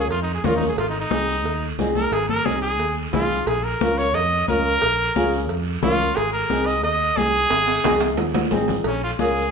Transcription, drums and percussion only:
0.10 cowbell, high conga, long guiro
0.44 high conga, low conga, low timbale, short guiro
0.61 high conga, short guiro
0.78 cowbell, high conga, long guiro
1.11 high conga, short guiro
1.29 short guiro
1.45 cowbell, high conga, long guiro
1.79 high conga, low timbale, short guiro
1.95 high conga, short guiro
2.12 cowbell, high conga, long guiro
2.29 high conga
2.46 high conga, short guiro
2.63 short guiro
2.79 cowbell, high conga, long guiro
3.13 high conga, low conga, low timbale, short guiro
3.30 short guiro
3.47 cowbell, high conga, long guiro
3.81 high conga, short guiro
3.97 short guiro
4.14 cowbell, high conga, long guiro
4.48 high conga, short guiro
4.65 short guiro
4.82 cowbell, high conga, long guiro
5.16 high conga, short guiro
5.32 short guiro
5.49 cowbell, high conga, long guiro
5.83 high conga, low conga, low timbale, short guiro
6.00 short guiro
6.16 cowbell, high conga, long guiro
6.50 high conga, short guiro
6.67 short guiro
6.83 cowbell, high conga, long guiro
7.17 high conga, short guiro
7.34 short guiro
7.50 cowbell, high conga, high timbale, long guiro
7.68 high timbale
7.84 high conga, low conga, high timbale, short guiro
8.00 high timbale, short guiro
8.17 cowbell, high conga, low timbale, long guiro
8.34 high conga, low timbale
8.51 high conga, low timbale, short guiro
8.68 low conga, low timbale, short guiro
8.84 cowbell, high conga, long guiro
9.19 high conga, short guiro
9.36 short guiro

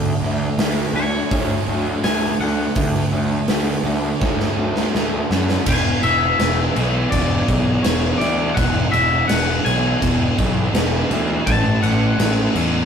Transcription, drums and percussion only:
0.59 snare, open hi-hat
1.31 kick, open hi-hat
2.04 snare, open hi-hat
2.75 kick, open hi-hat
2.95 snare
3.48 snare, open hi-hat
4.21 kick, snare
4.40 snare
4.76 snare
4.95 snare
5.31 snare
5.49 snare
5.66 kick, crash
6.03 crash
6.39 snare, crash
6.76 crash
7.12 kick, crash
7.48 kick, crash
7.84 snare, crash
8.21 crash
8.57 kick, crash
8.93 crash
9.29 snare, crash
9.66 crash
10.02 kick, crash
10.39 kick, crash
10.75 snare, crash
11.11 crash
11.47 kick, crash
11.83 crash
12.20 snare, crash
12.56 crash

